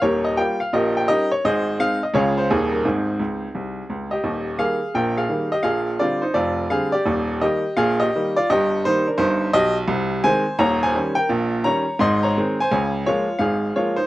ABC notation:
X:1
M:4/4
L:1/8
Q:"Swing" 1/4=170
K:Ab
V:1 name="Upright piano"
[GBd] e g f [GBe] g [GBe] d | [Ace]2 f e [FAd] c A B | [CEA]6- [CEA] [Ge]- | [K:Eb] [Ge]2 [Af]2 [Bg] [Af]2 [Ge] |
[Af]2 [Fd] [Ec] [Fd]2 [Af] [Gd]- | [Gd]2 [Ge]2 [Af] [Ge]2 [Fd] | [Ge]2 [Ec] [DB] [Ec]2 [Ge] z | [K:Ab] z2 [ca]2 [db] [ca]2 [Bg] |
z2 [db]2 [ec'] [db]2 [ca] | [da]2 [Fd]2 [Af]2 [Fd] [Ec] |]
V:2 name="Upright piano" clef=bass
[E,,,E,,]2 [G,B,F]2 [B,,,B,,]2 [G,DE]2 | [A,,,A,,]2 [A,CE]2 [D,,D,A,]2 [E,,,E,,E,G,E]2 | [A,,,A,,]2 D,,2 C,,2 D,,2 | [K:Eb] [E,,,E,,]2 [E,G,B,]2 [B,,,B,,]2 [E,G,B,]2 |
[B,,,B,,]2 [D,G,C]2 [F,,,F,,]2 [D,G,C]2 | [E,,,E,,]2 [E,G,B,]2 [B,,,B,,]2 [E,G,B,]2 | [G,,,G,,]2 [E,G,B,]2 [G,,,G,,]2 _C,,2 | [K:Ab] [C,,C,]2 [E,A,C]2 [E,,,E,,]2 [E,G,D]2 |
[B,,,B,,]2 [E,G,D]2 [A,,,A,,]2 [E,A,C]2 | [D,,D,]2 [F,A,B,]2 [A,,,A,,]2 [F,A,B,]2 |]